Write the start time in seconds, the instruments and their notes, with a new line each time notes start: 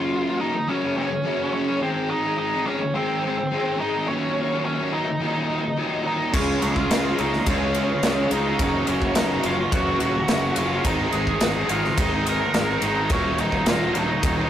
Already playing: distorted electric guitar F#2 C#3 F#4, lead electric guitar F4 F5
0.00 distorted electric guitar F#3 A#3 C#4
0.40 distorted electric guitar F#3 A#3 C#4 F#4, lead electric guitar D#4 D#5
0.54 muted distorted electric guitar stroke
0.67 distorted electric guitar F#2 C#3 F#3 A#3 C#4 F#4, lead electric guitar C#4 C#5
0.81 distorted electric guitar F#3 A#3 C#4 F#4
0.95 distorted electric guitar F#3 A#3 C#4 F#4, lead electric guitar C#4 C#5
1.11 muted distorted electric guitar stroke
1.24 distorted electric guitar F#2 C#3 F#3 A#3 C#4 F#4
1.52 distorted electric guitar F#3 A#3 C#4 F#4, lead electric guitar C#4 C#5
1.67 distorted electric guitar F#3 A#3 C#4 F#4
1.81 distorted electric guitar G#2 D#3 G#3 C4 D#4, lead electric guitar C4 C5
2.10 lead electric guitar D#4 D#5
2.22 distorted electric guitar G#3 C4 D#4
2.38 lead electric guitar D#4 D#5
2.65 distorted electric guitar D#3 G#3 C4 D#4, lead electric guitar C#4 C#5
2.81 muted distorted electric guitar stroke
2.94 distorted electric guitar G#2 D#3 G#3 C4 D#4, lead electric guitar C4 C5
3.08 distorted electric guitar G#3 C4 D#4
3.23 distorted electric guitar D#3 G#3 C4 D#4
3.38 muted distorted electric guitar stroke
3.51 distorted electric guitar G#2 D#3 G#3 C4 D#4
3.79 distorted electric guitar D#3 G#3 C4 D#4, lead electric guitar D#4 D#5
3.94 distorted electric guitar G#3 C4 D#4
4.08 distorted electric guitar D#2 A#2 D#3 F#3 A#3 D#4, lead electric guitar C#4 C#5
4.49 distorted electric guitar D#3 F#3 A#3 D#4
4.65 lead electric guitar C#4 C#5
4.92 distorted electric guitar D#3 F#3 A#3 D#4, lead electric guitar D#4 D#5
5.07 muted distorted electric guitar stroke
5.19 distorted electric guitar D#2 A#2 D#3 F#3 A#3 D#4
5.35 distorted electric guitar D#3 F#3 A#3 D#4
5.48 distorted electric guitar D#3 F#3 A#3 D#4
5.63 muted distorted electric guitar stroke
5.77 distorted electric guitar D#2 A#2 D#3 F#3 A#3 D#4
6.05 distorted electric guitar D#3 F#3 A#3 D#4, lead electric guitar D#4 D#5
6.19 distorted electric guitar F#3 A#3 D#4
6.23 distorted electric guitar D#3
6.33 fingered electric bass C#2, distorted electric guitar C#3 G#3 C#4 F4 G#4, lead electric guitar C#4 C#5, kick, crash
6.61 fingered electric bass C#2, distorted electric guitar G#3 C#4 F4 G#4, lead electric guitar F4 F5, ride
6.76 distorted electric guitar C#4 F4 G#4, kick
6.89 fingered electric bass C#2, distorted electric guitar C#3 G#3 C#4 F4 G#4, snare, ride
7.04 distorted electric guitar C#4 F4 G#4
7.18 fingered electric bass C#2, distorted electric guitar G#3 C#4 F4 G#4, lead electric guitar D#4 D#5, ride
7.32 distorted electric guitar C#4 F4 G#4, muted distorted electric guitar stroke, snare
7.46 fingered electric bass C#2, distorted electric guitar C#3 G#3 C#4 F4 G#4, lead electric guitar C#4 C#5, kick, ride
7.60 distorted electric guitar C#4 F4 G#4
7.74 distorted electric guitar G#3 C#4 F4 G#4, ride
7.89 distorted electric guitar C#4 F4 G#4, muted distorted electric guitar stroke
8.03 fingered electric bass C#2, distorted electric guitar C#3 G#3 C#4 F4 G#4, snare, ride
8.31 fingered electric bass C#2, distorted electric guitar G#3 C#4 F4 G#4, lead electric guitar D#4 D#5, ride
8.45 distorted electric guitar C#4 F4 G#4
8.59 fingered electric bass F#1, distorted electric guitar F#2 C#3 F#3 A#3 C#4 F#4, kick, ride
8.87 fingered electric bass F#1, distorted electric guitar F#3 A#3 C#4 F#4, lead electric guitar C#4 C#5, ride
9.02 distorted electric guitar F#3 A#3 C#4 F#4, kick
9.15 fingered electric bass F#1, distorted electric guitar F#2 C#3 F#3 A#3 C#4 F#4, lead electric guitar D#4 D#5, snare, ride
9.29 distorted electric guitar F#3 A#3 C#4 F#4
9.43 fingered electric bass F#1, distorted electric guitar F#3 A#3 C#4 F#4, lead electric guitar F4 F5, ride
9.58 distorted electric guitar F#3 A#3 C#4 F#4, muted distorted electric guitar stroke
9.71 fingered electric bass F#1, distorted electric guitar F#2 C#3 F#3 A#3 C#4 F#4, lead electric guitar F#4 F#5, kick, ride
9.86 distorted electric guitar F#3 A#3 C#4 F#4
9.99 fingered electric bass D#1, distorted electric guitar F#3 A#3 C#4 F#4, ride
10.14 distorted electric guitar F#3 A#3 C#4 F#4, muted distorted electric guitar stroke
10.28 fingered electric bass F#1, distorted electric guitar F#2 C#3 F#3 A#3 C#4 F#4, snare, ride
10.56 fingered electric bass F#1, distorted electric guitar F#3 A#3 C#4 F#4, lead electric guitar F4 F5, ride
10.70 distorted electric guitar F#3 A#3 C#4 F#4
10.85 fingered electric bass G#1, distorted electric guitar G#2 D#3 G#3 C4 D#4, lead electric guitar D#4 D#5, kick, ride
11.12 fingered electric bass G#1, distorted electric guitar D#3 G#3 C4 D#4, lead electric guitar G#4 G#5, ride
11.27 distorted electric guitar G#3 C4 D#4, kick
11.40 fingered electric bass G#1, distorted electric guitar G#2 D#3 G#3 C4 D#4, snare, ride
11.54 distorted electric guitar G#3 C4 D#4
11.69 fingered electric bass G#1, distorted electric guitar D#3 G#3 C4, lead electric guitar F4 F5, ride
11.73 distorted electric guitar D#4
11.82 distorted electric guitar G#3 C4 D#4, muted distorted electric guitar stroke, snare
11.98 fingered electric bass G#1, distorted electric guitar G#2 D#3 G#3 C4 D#4, lead electric guitar D#4 D#5, kick, ride
12.11 distorted electric guitar G#3 C4 D#4
12.25 distorted electric guitar D#3 G#3 C4 D#4, lead electric guitar A#4 A#5, ride
12.40 distorted electric guitar G#3 C4 D#4, muted distorted electric guitar stroke
12.54 fingered electric bass G#1, distorted electric guitar G#2 D#3 G#3 C4 D#4, snare, ride
12.82 fingered electric bass G#1, distorted electric guitar D#3 G#3 C4, lead electric guitar D#4 D#5, ride
12.86 distorted electric guitar D#4
12.97 distorted electric guitar G#3 C4 D#4
13.10 fingered electric bass D#1, distorted electric guitar D#2 A#2 D#3 F#3, lead electric guitar C#4 C#5, kick, ride
13.14 distorted electric guitar A#3 D#4
13.38 fingered electric bass D#1, distorted electric guitar D#3 F#3 A#3 D#4, lead electric guitar D#4 D#5, ride
13.52 distorted electric guitar F#3 A#3 D#4, kick
13.56 distorted electric guitar D#3
13.66 fingered electric bass D#1, distorted electric guitar D#2 A#2 D#3 F#3 A#3, lead electric guitar F4 F5, snare, ride
13.70 distorted electric guitar D#4
13.81 distorted electric guitar D#3 F#3 A#3 D#4
13.94 fingered electric bass D#1, distorted electric guitar D#3 F#3 A#3 D#4, lead electric guitar D#4 D#5, ride
14.09 distorted electric guitar D#3 F#3 A#3 D#4, muted distorted electric guitar stroke
14.23 fingered electric bass D#1, distorted electric guitar D#2 A#2 D#3 F#3 A#3 D#4, kick, ride
14.37 distorted electric guitar D#3 F#3 A#3 D#4